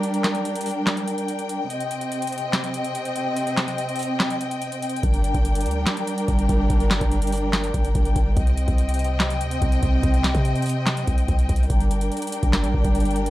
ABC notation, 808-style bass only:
X:1
M:4/4
L:1/16
Q:1/4=144
K:Gm
V:1 name="808-style bass" clef=bass
z16 | z16 | z16 | G,,,3 G,,,3 D,,2 z4 G,,,2 G,,,2 |
G,,,3 G,,,6- G,,, G,,,2 G,,,2 G,,,2 | C,,3 C,,6- C,, D,,2 C,,2 C,,2 | C,,3 C,6- C, C,,2 C,,2 C,,2 | G,,,4 z3 G,,,2 A,,, G,,, G,,,4- G,,, |]